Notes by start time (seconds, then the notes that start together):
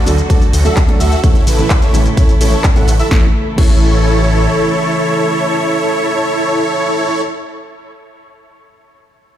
Already playing: D3 F#3 A3 F#4 A4 D5
0.06 D2 F#3 A3 D4 A4, open hi-hat, shaker
0.18 closed hi-hat, shaker
0.29 F#3 A3 D4 F#4 A4 D5, kick, closed hi-hat, ride, shaker
0.42 closed hi-hat, shaker
0.53 D2, open hi-hat, shaker
0.64 F#3 A3 D4 F#4 A4 E5, closed hi-hat, shaker
0.77 kick, clap, closed hi-hat, ride, shaker
0.88 F#3 A3 D4 A4, closed hi-hat
1.00 D2 F#4 A4 E5, open hi-hat, shaker
1.12 closed hi-hat, shaker
1.23 A2 C#3 E3 A3 C#4 E4 A4 C#5, kick, closed hi-hat, ride, shaker
1.35 closed hi-hat, shaker
1.47 A1 E4 A4 B4, open hi-hat, shaker
1.58 A2 E3 A3 C#4 A4, closed hi-hat, shaker
1.70 kick, clap, closed hi-hat, ride, shaker
1.82 E4 A4 C#5, closed hi-hat, shaker
1.93 A1 A2 E3 A3 C#4 A4, open hi-hat, shaker
2.06 closed hi-hat, shaker
2.17 A2 E3 A3 C#4 E4 A4 C#5, kick, closed hi-hat, ride, shaker
2.29 closed hi-hat, shaker
2.40 A1 A2 E3 A3 C#4 E4 A4 C#5, open hi-hat, shaker
2.53 closed hi-hat, shaker
2.64 kick, clap, closed hi-hat, ride, shaker
2.75 A2 E3 A3 C#4 E4 A4 F#5, closed hi-hat, shaker
2.88 A1, open hi-hat, shaker
2.99 E4 A4 E5, closed hi-hat, shaker
3.09 A1 C#3 E3 A3 C#4 E4 A4 C#5, kick, snare
3.56 A1 E3 A3 C#4 E4 A4 C#5, kick, crash